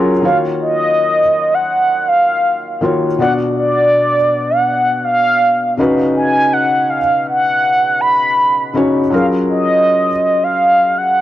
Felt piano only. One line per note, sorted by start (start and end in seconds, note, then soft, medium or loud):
0.00 0.10 F#3 medium
0.00 0.11 C#4 medium
0.00 0.11 F4 medium
0.00 0.11 G#4 medium
0.00 0.12 A#4 loud
0.22 1.19 D#3 medium
0.22 1.19 A#3 medium
0.22 1.20 F4 medium
0.22 1.20 F#4 medium
0.22 1.20 C#5 medium
2.81 3.06 D#3 medium
2.81 3.07 A#3 medium
2.81 3.07 F4 medium
2.81 3.08 F#4 medium
2.81 3.08 C#5 medium
3.18 4.15 B2 medium
3.18 4.15 B3 medium
3.18 4.16 D4 medium
3.18 4.16 F#4 medium
3.18 4.17 D5 medium
5.77 6.97 C#3 medium
5.77 6.98 C#4 medium
5.77 6.98 D#4 medium
5.77 6.98 F#4 medium
5.77 6.99 B4 medium
8.74 8.99 C#3 medium
8.74 8.99 C#4 medium
8.74 9.00 D#4 medium
8.74 9.00 F#4 medium
8.74 9.01 C#5 medium
9.10 10.07 F#3 medium
9.10 10.08 C#4 medium
9.10 10.08 F4 medium
9.10 10.09 G#4 medium
9.10 10.09 A#4 medium